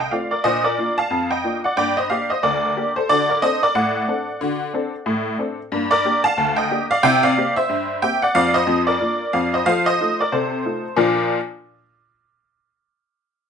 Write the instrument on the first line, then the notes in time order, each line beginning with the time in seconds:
honky-tonk piano
0.00 D#5 G5
0.11 A3 C4 F4 D5 F5
0.31 A#4 D5
0.44 A#2 D4 C5 D#5
0.64 A#4 D5
0.78 A#3 D4 F4
0.98 F5 A5
1.10 F2
1.31 D#5 G5
1.44 A#3 D4 F4
1.64 D5 F#5
1.77 G2 A#3 D5 G5
1.97 C5 D#5
2.10 A#3 D4 G4 D5 F5
2.30 C5 D#5
2.43 D2 A#4 D5
2.76 A#3 D4 G4
2.96 A4 C5
3.09 D3 F#4 A4 D5
3.30 A#4 D5
3.42 C4 D4 A4 C5 D#5
3.63 A#4 D5
3.75 A2 D5 F#5
4.08 C4 D4 A4
4.41 D3 F#4
4.74 C4 D4 A4
5.06 A2
5.39 C4 D4 A4
5.72 G2 A#3
5.91 A#4 D5
6.05 A#3 D4 G4
6.24 F5 A5
6.38 D2
6.56 D#5 G5
6.70 A#3 D4 G4
6.91 D5 F5
7.03 C3 E4 E5 G5
7.23 D5 F5
7.37 A#3 C4 G4
7.56 C5 E5
7.69 G2
8.02 A#3 C4 G4 E5 G5
8.22 D5 F#5
8.35 F2 F3 D5 F5
8.54 C5 D#5
8.67 F2 F3
8.87 A#4 D5
9.00 A#3 D4 F4
9.33 F2 F3 D5 F5
9.54 C5 D#5
9.66 F3 A4 C5 F5
9.86 C5 D#5
10.01 A3 D#4 F4
10.20 A#4 D5
10.32 C3 A4 C5
10.65 A3 D#4 F4
10.96 A#2 F3 D4 F4 A#4